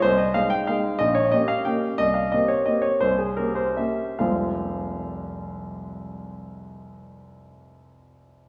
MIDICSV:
0, 0, Header, 1, 2, 480
1, 0, Start_track
1, 0, Key_signature, -4, "minor"
1, 0, Tempo, 324149
1, 65, Time_signature, 3, 2, 24, 8
1, 2948, Tempo, 348230
1, 4868, Tempo, 418118
1, 8708, Tempo, 400000
1, 10818, End_track
2, 0, Start_track
2, 0, Title_t, "Grand piano"
2, 0, Program_c, 0, 0
2, 34, Note_on_c, 0, 72, 93
2, 58, Note_on_c, 0, 36, 60
2, 264, Note_on_c, 0, 75, 75
2, 283, Note_off_c, 0, 72, 0
2, 308, Control_c, 0, 64, 127
2, 508, Note_on_c, 0, 77, 83
2, 518, Note_off_c, 0, 36, 0
2, 519, Note_off_c, 0, 75, 0
2, 528, Note_on_c, 0, 56, 41
2, 536, Note_on_c, 0, 63, 44
2, 542, Note_on_c, 0, 68, 47
2, 555, Control_c, 0, 64, 0
2, 739, Note_on_c, 0, 79, 82
2, 762, Note_off_c, 0, 77, 0
2, 967, Note_off_c, 0, 56, 0
2, 971, Note_off_c, 0, 63, 0
2, 975, Note_off_c, 0, 68, 0
2, 996, Note_on_c, 0, 77, 69
2, 1001, Note_off_c, 0, 79, 0
2, 1019, Note_on_c, 0, 56, 44
2, 1027, Note_on_c, 0, 63, 45
2, 1030, Note_on_c, 0, 68, 45
2, 1448, Note_off_c, 0, 56, 0
2, 1452, Note_off_c, 0, 63, 0
2, 1454, Note_off_c, 0, 68, 0
2, 1460, Note_on_c, 0, 75, 92
2, 1484, Note_off_c, 0, 77, 0
2, 1485, Note_on_c, 0, 34, 58
2, 1698, Note_on_c, 0, 73, 71
2, 1710, Note_off_c, 0, 75, 0
2, 1743, Control_c, 0, 64, 127
2, 1948, Note_off_c, 0, 34, 0
2, 1948, Note_on_c, 0, 75, 84
2, 1952, Note_off_c, 0, 73, 0
2, 1965, Note_on_c, 0, 58, 41
2, 1974, Note_on_c, 0, 61, 43
2, 1982, Note_on_c, 0, 67, 47
2, 1983, Control_c, 0, 64, 0
2, 2189, Note_on_c, 0, 77, 75
2, 2203, Note_off_c, 0, 75, 0
2, 2412, Note_off_c, 0, 58, 0
2, 2417, Note_off_c, 0, 61, 0
2, 2421, Note_off_c, 0, 67, 0
2, 2442, Note_on_c, 0, 79, 68
2, 2451, Note_off_c, 0, 77, 0
2, 2466, Note_on_c, 0, 58, 42
2, 2473, Note_on_c, 0, 61, 42
2, 2476, Note_on_c, 0, 67, 44
2, 2902, Note_off_c, 0, 58, 0
2, 2906, Note_off_c, 0, 61, 0
2, 2907, Note_off_c, 0, 67, 0
2, 2934, Note_on_c, 0, 75, 95
2, 2939, Note_off_c, 0, 79, 0
2, 2953, Note_on_c, 0, 36, 54
2, 3154, Note_on_c, 0, 77, 58
2, 3169, Note_off_c, 0, 75, 0
2, 3183, Control_c, 0, 64, 127
2, 3399, Note_on_c, 0, 75, 72
2, 3401, Note_off_c, 0, 36, 0
2, 3401, Note_off_c, 0, 77, 0
2, 3419, Note_on_c, 0, 58, 39
2, 3426, Note_on_c, 0, 60, 37
2, 3430, Note_on_c, 0, 67, 41
2, 3433, Control_c, 0, 64, 0
2, 3627, Note_on_c, 0, 73, 68
2, 3644, Note_off_c, 0, 75, 0
2, 3845, Note_off_c, 0, 58, 0
2, 3849, Note_off_c, 0, 60, 0
2, 3851, Note_off_c, 0, 67, 0
2, 3865, Note_on_c, 0, 75, 70
2, 3877, Note_off_c, 0, 73, 0
2, 3883, Note_on_c, 0, 58, 37
2, 3891, Note_on_c, 0, 60, 37
2, 3899, Note_on_c, 0, 67, 42
2, 4087, Note_on_c, 0, 73, 68
2, 4118, Note_off_c, 0, 75, 0
2, 4319, Note_off_c, 0, 58, 0
2, 4323, Note_off_c, 0, 60, 0
2, 4327, Note_off_c, 0, 67, 0
2, 4346, Note_on_c, 0, 72, 80
2, 4349, Note_off_c, 0, 73, 0
2, 4369, Note_on_c, 0, 36, 51
2, 4593, Note_on_c, 0, 68, 56
2, 4602, Note_off_c, 0, 72, 0
2, 4702, Control_c, 0, 64, 127
2, 4844, Note_on_c, 0, 70, 65
2, 4852, Note_off_c, 0, 36, 0
2, 4857, Note_off_c, 0, 68, 0
2, 4864, Note_on_c, 0, 58, 35
2, 4872, Note_on_c, 0, 61, 33
2, 4878, Note_on_c, 0, 67, 37
2, 5062, Note_on_c, 0, 72, 63
2, 5079, Note_off_c, 0, 70, 0
2, 5275, Note_off_c, 0, 58, 0
2, 5279, Note_off_c, 0, 61, 0
2, 5283, Note_off_c, 0, 67, 0
2, 5308, Note_on_c, 0, 76, 58
2, 5309, Note_off_c, 0, 72, 0
2, 5322, Note_on_c, 0, 58, 35
2, 5327, Note_on_c, 0, 61, 35
2, 5335, Note_on_c, 0, 67, 39
2, 5336, Control_c, 0, 64, 0
2, 5771, Note_off_c, 0, 58, 0
2, 5774, Note_off_c, 0, 61, 0
2, 5778, Note_off_c, 0, 67, 0
2, 5791, Note_on_c, 0, 77, 55
2, 5796, Note_on_c, 0, 29, 50
2, 5796, Note_on_c, 0, 36, 41
2, 5803, Note_on_c, 0, 53, 40
2, 5805, Note_on_c, 0, 56, 39
2, 5807, Note_on_c, 0, 65, 42
2, 5808, Note_on_c, 0, 60, 41
2, 5810, Note_off_c, 0, 76, 0
2, 6104, Control_c, 0, 64, 127
2, 9611, Note_off_c, 0, 77, 0
2, 9616, Note_off_c, 0, 29, 0
2, 9616, Note_off_c, 0, 36, 0
2, 9623, Note_off_c, 0, 53, 0
2, 9626, Note_off_c, 0, 56, 0
2, 9628, Note_off_c, 0, 60, 0
2, 9628, Note_off_c, 0, 65, 0
2, 10818, End_track
0, 0, End_of_file